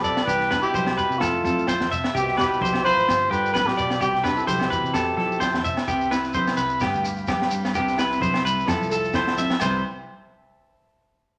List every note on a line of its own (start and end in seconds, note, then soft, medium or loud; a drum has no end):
0.00 0.20 B1 medium
0.00 0.24 C3 medium
0.00 0.23 G3 medium
0.00 0.25 F4 medium
0.00 0.23 A4 medium
0.00 0.27 F5 medium
0.00 0.27 G5 medium
0.00 1.18 B5 medium
0.04 0.26 D5 medium
0.04 shekere medium
0.17 snare medium
0.17 low agogo medium
0.17 shekere soft
0.24 0.66 C2 loud
0.24 0.70 C3 medium
0.24 0.60 E3 medium
0.24 0.50 G4 medium
0.24 0.59 B4 loud
0.24 kick medium
0.28 1.20 B4 medium
0.28 3.05 E5 medium
0.28 shekere medium
0.40 snare soft
0.50 0.63 D4 medium
0.50 0.73 B4 medium
0.50 snare medium
0.50 muted conga soft
0.50 low agogo medium
0.50 shekere medium
0.62 0.94 B2 medium
0.62 1.20 E4 medium
0.62 0.94 G4 medium
0.62 shekere soft
0.73 1.04 C2 medium
0.73 1.16 G3 medium
0.73 0.97 C5 medium
0.73 kick medium
0.73 high conga medium
0.73 shekere medium
0.87 snare medium
0.87 low agogo medium
0.95 1.21 B2 medium
0.95 1.20 G4 medium
0.95 1.20 B4 medium
0.95 muted conga soft
0.95 shekere medium
1.10 1.19 C3 medium
1.10 shekere soft
1.19 1.40 F2 loud
1.19 1.90 A2 medium
1.19 1.63 F3 medium
1.19 1.90 F4 medium
1.19 1.43 A4 medium
1.19 2.13 F5 medium
1.19 2.13 A5 medium
1.19 kick medium
1.19 snare medium
1.19 muted conga soft
1.19 low conga medium
1.19 low agogo medium
1.19 shekere medium
1.44 1.81 F3 loud
1.44 1.66 C4 medium
1.44 1.66 A4 medium
1.44 high conga medium
1.44 shekere medium
1.59 shekere soft
1.67 2.10 C4 medium
1.67 1.90 C5 medium
1.67 kick medium
1.67 snare medium
1.67 high conga medium
1.67 low agogo medium
1.67 shekere medium
1.80 2.08 F2 medium
1.80 snare medium
1.91 2.13 E5 medium
1.91 low conga medium
1.91 shekere medium
2.04 snare medium
2.04 low agogo medium
2.04 shekere soft
2.14 2.53 C2 medium
2.14 2.37 B2 medium
2.14 2.57 C3 medium
2.14 2.36 G4 medium
2.14 2.36 G4 loud
2.14 3.07 C5 medium
2.14 4.92 B5 medium
2.14 kick medium
2.14 shekere medium
2.28 snare soft
2.37 2.82 B2 medium
2.37 3.05 E4 medium
2.37 2.81 G4 medium
2.37 2.60 B4 medium
2.37 snare medium
2.37 muted conga soft
2.37 low agogo medium
2.37 shekere medium
2.53 shekere soft
2.61 2.90 C2 medium
2.61 3.04 G3 medium
2.61 2.83 C5 medium
2.61 kick medium
2.61 high conga medium
2.65 shekere medium
2.73 snare medium
2.73 low agogo medium
2.84 3.33 F3 medium
2.84 3.06 B4 medium
2.84 3.32 C5 loud
2.84 muted conga soft
2.84 high conga medium
2.95 3.05 A1 medium
2.99 shekere soft
3.08 3.27 G1 loud
3.08 3.50 G2 medium
3.08 4.00 F5 medium
3.08 4.00 G5 medium
3.08 muted clean electric guitar stroke medium
3.08 kick medium
3.08 snare medium
3.08 muted conga soft
3.08 low agogo medium
3.08 shekere medium
3.30 3.68 G2 loud
3.30 3.53 D3 medium
3.30 3.99 F4 medium
3.30 3.53 G4 medium
3.30 3.53 B4 loud
3.30 shekere medium
3.46 shekere soft
3.54 3.77 A2 medium
3.54 3.68 D3 medium
3.54 3.68 B4 loud
3.54 3.76 B4 medium
3.54 kick medium
3.54 snare medium
3.54 high conga medium
3.54 low agogo medium
3.54 shekere medium
3.66 3.95 B1 medium
3.66 4.00 B2 medium
3.66 4.01 G4 medium
3.66 snare medium
3.77 4.01 B2 medium
3.77 3.99 D5 medium
3.77 shekere medium
3.90 snare medium
3.90 low agogo medium
3.90 shekere soft
4.00 4.39 C2 medium
4.00 4.34 B2 medium
4.00 4.43 C3 medium
4.00 4.23 G4 medium
4.00 4.35 G4 medium
4.00 4.92 C5 medium
4.00 4.93 E5 medium
4.00 kick medium
4.00 shekere medium
4.15 snare soft
4.23 4.37 D4 medium
4.23 4.46 B4 medium
4.23 snare medium
4.23 muted conga soft
4.23 low agogo medium
4.23 shekere medium
4.37 4.50 C3 medium
4.37 4.94 E4 medium
4.37 4.48 A4 medium
4.37 shekere soft
4.46 4.78 C2 medium
4.46 5.65 B2 medium
4.46 4.70 D3 medium
4.46 5.64 G4 medium
4.46 4.69 C5 medium
4.46 kick medium
4.46 high conga medium
4.46 shekere medium
4.60 snare medium
4.60 low agogo medium
4.70 4.94 E3 medium
4.70 4.93 B4 medium
4.70 shekere medium
4.84 4.92 C3 medium
4.84 shekere soft
4.93 5.13 F2 loud
4.93 5.36 F3 medium
4.93 5.16 A4 medium
4.93 5.86 C5 medium
4.93 5.85 E5 medium
4.93 5.86 A5 medium
4.93 kick medium
4.93 snare medium
4.93 muted conga soft
4.93 low conga medium
4.93 low agogo medium
4.93 shekere medium
5.17 5.55 F3 medium
5.17 5.85 E4 medium
5.17 5.39 A4 medium
5.17 snare soft
5.17 high conga medium
5.32 shekere soft
5.39 5.82 C4 medium
5.39 5.63 C5 medium
5.39 kick medium
5.39 snare medium
5.39 high conga medium
5.39 low agogo medium
5.39 shekere medium
5.54 5.81 F2 medium
5.54 snare medium
5.64 5.86 E5 medium
5.64 low conga medium
5.64 shekere medium
5.77 snare medium
5.77 low agogo medium
5.77 shekere soft
5.86 6.45 C2 medium
5.86 6.81 C3 medium
5.86 6.34 B3 medium
5.86 6.10 G4 medium
5.86 6.79 E5 medium
5.86 8.65 B5 medium
5.86 6.80 C6 medium
5.86 kick medium
5.86 muted conga soft
5.86 shekere medium
6.01 shekere soft
6.11 6.79 E4 medium
6.11 6.33 B4 medium
6.11 snare medium
6.11 muted conga soft
6.11 low agogo medium
6.11 shekere medium
6.24 snare soft
6.24 shekere soft
6.34 6.79 B3 medium
6.34 6.57 C5 medium
6.34 kick medium
6.34 high conga medium
6.34 shekere medium
6.47 snare medium
6.47 low agogo medium
6.47 shekere soft
6.57 6.77 C2 medium
6.57 6.79 B4 medium
6.57 muted nylon-string guitar stroke medium
6.57 snare soft
6.57 shekere medium
6.69 shekere soft
6.80 6.92 G1 loud
6.80 7.74 G2 medium
6.80 7.27 B3 medium
6.80 7.03 G4 medium
6.80 7.73 F5 medium
6.80 7.74 G5 medium
6.80 kick medium
6.80 snare medium
6.80 muted conga soft
6.80 high conga medium
6.80 low agogo medium
6.80 shekere medium
6.94 7.60 D2 medium
6.94 shekere soft
7.05 muted nylon-string guitar stroke medium
7.05 muted clean electric guitar stroke medium
7.05 shekere medium
7.17 shekere soft
7.27 7.72 B3 medium
7.27 7.50 G4 medium
7.27 kick medium
7.27 snare medium
7.27 high conga medium
7.27 low agogo medium
7.27 shekere medium
7.42 snare medium
7.51 7.72 G3 medium
7.51 shekere medium
7.65 snare medium
7.65 low agogo medium
7.65 shekere soft
7.74 8.32 C2 loud
7.74 8.68 C3 medium
7.74 8.18 B3 medium
7.74 7.97 G4 medium
7.74 8.65 E5 medium
7.74 8.67 C6 medium
7.74 kick medium
7.74 shekere medium
7.88 snare soft
7.88 shekere soft
7.97 8.65 E4 medium
7.97 8.21 B4 medium
7.97 snare medium
7.97 muted conga soft
7.97 low agogo medium
7.97 shekere medium
8.11 snare soft
8.11 shekere soft
8.20 8.65 B3 medium
8.20 8.44 C5 medium
8.20 kick medium
8.20 high conga medium
8.20 low conga medium
8.20 shekere medium
8.34 snare medium
8.34 low agogo medium
8.34 shekere soft
8.42 8.64 C2 medium
8.42 8.64 G3 medium
8.42 8.67 B4 medium
8.46 shekere medium
8.60 shekere soft
8.65 8.79 F2 loud
8.65 9.59 F3 medium
8.65 9.12 E4 medium
8.65 8.90 A4 medium
8.65 9.60 E5 medium
8.65 9.60 A5 medium
8.65 9.60 E6 medium
8.65 kick medium
8.65 snare medium
8.65 muted conga soft
8.65 high conga medium
8.65 low agogo medium
8.65 shekere loud
8.81 9.47 C2 medium
8.81 shekere soft
8.89 9.58 A4 medium
8.89 9.14 A4 medium
8.89 shekere medium
9.05 shekere soft
9.13 9.58 E4 medium
9.13 9.37 C5 medium
9.13 kick medium
9.13 snare medium
9.13 low agogo medium
9.13 shekere medium
9.27 snare medium
9.37 9.58 C4 medium
9.37 9.60 E5 medium
9.37 muted conga soft
9.37 high conga medium
9.37 shekere medium
9.50 snare medium
9.50 low agogo medium
9.50 shekere soft
9.59 9.83 C2 loud
9.59 9.82 C3 medium
9.59 9.82 G3 medium
9.59 9.82 B3 medium
9.59 9.82 E4 medium
9.59 9.83 B4 medium
9.59 9.83 C5 medium
9.59 9.83 E5 medium
9.59 kick medium
9.59 ride bell medium
9.59 muted conga medium
9.59 low agogo loud
9.59 shekere medium